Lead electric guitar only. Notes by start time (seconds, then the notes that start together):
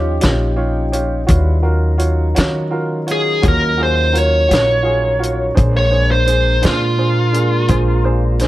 Already playing: G4
3.12 G#4
3.48 A#4
3.83 C5
4.19 C#5
5.77 C#5
6.11 C5
6.66 F4